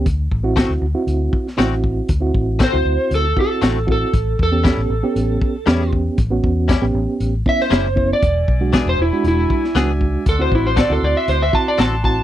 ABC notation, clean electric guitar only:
X:1
M:4/4
L:1/8
Q:1/4=118
K:D
V:1 name="Clean electric guitar"
z2 [D,A,=CF] z3 [D,A,CF] z | z2 [D,A,=CF] z3 [D,A,CF] z | z2 [A,,G,CE] z3 [A,,G,CE] z | z2 [A,,G,CE] z3 [A,,G,CE] z |
z2 [E,B,D^G] z3 [E,B,DG] z | z2 [D,=CFA] z3 [D,CFA] z |]